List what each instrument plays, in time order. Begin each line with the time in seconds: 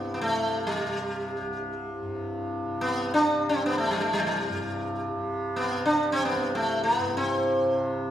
Already playing: tanpura C2 G2 C3, sitar B3
0.14 tanpura C3, sitar B3
0.21 sitar A3
0.67 sitar G3
0.79 tanpura C3
1.41 tanpura C2
2.02 tanpura G2
2.63 tanpura C3
2.81 sitar B3
3.14 sitar D4
3.26 tanpura C3
3.49 sitar C4
3.66 sitar B3
3.78 sitar A3
3.87 tanpura C2, sitar G3
4.00 sitar A3
4.13 sitar G3
4.20 sitar A3
4.27 sitar G3
4.50 tanpura G2
5.13 tanpura C3
5.56 sitar B3
5.76 tanpura C3
5.86 sitar D4
6.12 sitar C4
6.25 sitar B3
6.36 tanpura C2
6.55 sitar A3
6.83 sitar B3
6.98 tanpura G2
7.17 sitar C4
7.60 tanpura C3